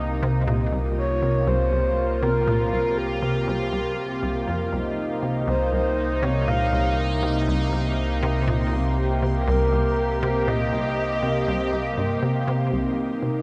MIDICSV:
0, 0, Header, 1, 6, 480
1, 0, Start_track
1, 0, Key_signature, -3, "minor"
1, 0, Tempo, 500000
1, 698, Time_signature, 4, 2, 24, 8
1, 12884, End_track
2, 0, Start_track
2, 0, Title_t, "Synth texture"
2, 0, Program_c, 0, 99
2, 0, Note_on_c, 0, 67, 84
2, 0, Note_on_c, 0, 79, 86
2, 4537, Note_on_c, 0, 84, 88
2, 4563, Note_off_c, 0, 79, 0
2, 12217, Note_on_c, 0, 75, 88
2, 12218, Note_on_c, 0, 63, 88
2, 12230, Note_off_c, 0, 67, 0
2, 12241, Note_off_c, 0, 84, 0
2, 12884, Note_off_c, 0, 63, 0
2, 12884, Note_off_c, 0, 75, 0
2, 12884, End_track
3, 0, Start_track
3, 0, Title_t, "Soft synth lead"
3, 0, Program_c, 1, 80
3, 942, Note_on_c, 1, 73, 114
3, 1420, Note_on_c, 1, 72, 112
3, 1435, Note_off_c, 1, 73, 0
3, 2135, Note_off_c, 1, 72, 0
3, 2141, Note_on_c, 1, 70, 94
3, 2585, Note_off_c, 1, 70, 0
3, 2620, Note_on_c, 1, 70, 105
3, 2859, Note_on_c, 1, 67, 90
3, 2873, Note_off_c, 1, 70, 0
3, 4298, Note_off_c, 1, 67, 0
3, 5258, Note_on_c, 1, 72, 80
3, 5481, Note_off_c, 1, 72, 0
3, 5500, Note_on_c, 1, 72, 94
3, 5980, Note_on_c, 1, 73, 92
3, 5994, Note_off_c, 1, 72, 0
3, 6218, Note_on_c, 1, 77, 104
3, 6233, Note_off_c, 1, 73, 0
3, 6698, Note_off_c, 1, 77, 0
3, 9097, Note_on_c, 1, 70, 96
3, 9779, Note_off_c, 1, 70, 0
3, 9817, Note_on_c, 1, 70, 92
3, 10058, Note_on_c, 1, 75, 109
3, 10072, Note_off_c, 1, 70, 0
3, 11738, Note_off_c, 1, 75, 0
3, 12884, End_track
4, 0, Start_track
4, 0, Title_t, "Analog synth pad"
4, 0, Program_c, 2, 89
4, 0, Note_on_c, 2, 48, 82
4, 0, Note_on_c, 2, 58, 76
4, 0, Note_on_c, 2, 63, 94
4, 684, Note_off_c, 2, 63, 0
4, 696, Note_on_c, 2, 65, 91
4, 4522, Note_off_c, 2, 65, 0
4, 4536, Note_on_c, 2, 63, 94
4, 8362, Note_off_c, 2, 63, 0
4, 8377, Note_on_c, 2, 67, 93
4, 12203, Note_off_c, 2, 67, 0
4, 12216, Note_on_c, 2, 63, 94
4, 12884, Note_off_c, 2, 48, 0
4, 12884, Note_off_c, 2, 58, 0
4, 12884, Note_off_c, 2, 63, 0
4, 12884, End_track
5, 0, Start_track
5, 0, Title_t, "Synth arpeggio sound"
5, 0, Program_c, 3, 84
5, 217, Note_on_c, 3, 48, 100
5, 388, Note_off_c, 3, 48, 0
5, 456, Note_on_c, 3, 46, 98
5, 628, Note_off_c, 3, 46, 0
5, 696, Note_on_c, 3, 36, 82
5, 800, Note_off_c, 3, 36, 0
5, 1177, Note_on_c, 3, 48, 75
5, 1348, Note_off_c, 3, 48, 0
5, 1414, Note_on_c, 3, 36, 97
5, 1644, Note_off_c, 3, 36, 0
5, 1657, Note_on_c, 3, 36, 81
5, 1760, Note_off_c, 3, 36, 0
5, 2136, Note_on_c, 3, 48, 98
5, 2308, Note_off_c, 3, 48, 0
5, 2376, Note_on_c, 3, 46, 100
5, 2548, Note_off_c, 3, 46, 0
5, 2616, Note_on_c, 3, 36, 79
5, 2719, Note_off_c, 3, 36, 0
5, 3096, Note_on_c, 3, 48, 74
5, 3268, Note_off_c, 3, 48, 0
5, 3336, Note_on_c, 3, 36, 99
5, 3565, Note_off_c, 3, 36, 0
5, 3578, Note_on_c, 3, 36, 82
5, 3680, Note_off_c, 3, 36, 0
5, 4057, Note_on_c, 3, 36, 74
5, 4285, Note_off_c, 3, 36, 0
5, 4297, Note_on_c, 3, 41, 76
5, 4468, Note_off_c, 3, 41, 0
5, 4537, Note_on_c, 3, 36, 83
5, 4640, Note_off_c, 3, 36, 0
5, 5017, Note_on_c, 3, 48, 73
5, 5188, Note_off_c, 3, 48, 0
5, 5256, Note_on_c, 3, 36, 98
5, 5485, Note_off_c, 3, 36, 0
5, 5497, Note_on_c, 3, 36, 82
5, 5600, Note_off_c, 3, 36, 0
5, 5977, Note_on_c, 3, 48, 103
5, 6148, Note_off_c, 3, 48, 0
5, 6218, Note_on_c, 3, 46, 97
5, 6389, Note_off_c, 3, 46, 0
5, 6458, Note_on_c, 3, 36, 86
5, 6560, Note_off_c, 3, 36, 0
5, 6939, Note_on_c, 3, 48, 75
5, 7109, Note_off_c, 3, 48, 0
5, 7178, Note_on_c, 3, 36, 98
5, 7406, Note_off_c, 3, 36, 0
5, 7417, Note_on_c, 3, 36, 82
5, 7520, Note_off_c, 3, 36, 0
5, 7897, Note_on_c, 3, 48, 103
5, 8068, Note_off_c, 3, 48, 0
5, 8136, Note_on_c, 3, 46, 98
5, 8308, Note_off_c, 3, 46, 0
5, 8377, Note_on_c, 3, 36, 80
5, 8480, Note_off_c, 3, 36, 0
5, 8856, Note_on_c, 3, 48, 75
5, 9028, Note_off_c, 3, 48, 0
5, 9097, Note_on_c, 3, 36, 100
5, 9325, Note_off_c, 3, 36, 0
5, 9337, Note_on_c, 3, 36, 82
5, 9440, Note_off_c, 3, 36, 0
5, 9818, Note_on_c, 3, 48, 104
5, 9989, Note_off_c, 3, 48, 0
5, 10058, Note_on_c, 3, 46, 100
5, 10229, Note_off_c, 3, 46, 0
5, 10299, Note_on_c, 3, 36, 83
5, 10401, Note_off_c, 3, 36, 0
5, 10778, Note_on_c, 3, 48, 76
5, 10949, Note_off_c, 3, 48, 0
5, 11017, Note_on_c, 3, 36, 99
5, 11245, Note_off_c, 3, 36, 0
5, 11256, Note_on_c, 3, 36, 80
5, 11359, Note_off_c, 3, 36, 0
5, 11497, Note_on_c, 3, 43, 75
5, 11668, Note_off_c, 3, 43, 0
5, 11737, Note_on_c, 3, 48, 77
5, 11908, Note_off_c, 3, 48, 0
5, 11976, Note_on_c, 3, 48, 102
5, 12205, Note_off_c, 3, 48, 0
5, 12217, Note_on_c, 3, 36, 84
5, 12320, Note_off_c, 3, 36, 0
5, 12696, Note_on_c, 3, 48, 73
5, 12868, Note_off_c, 3, 48, 0
5, 12884, End_track
6, 0, Start_track
6, 0, Title_t, "Synth drone"
6, 0, Program_c, 4, 95
6, 0, Note_on_c, 4, 36, 82
6, 4513, Note_off_c, 4, 36, 0
6, 4536, Note_on_c, 4, 36, 89
6, 12193, Note_off_c, 4, 36, 0
6, 12216, Note_on_c, 4, 36, 82
6, 12884, Note_off_c, 4, 36, 0
6, 12884, End_track
0, 0, End_of_file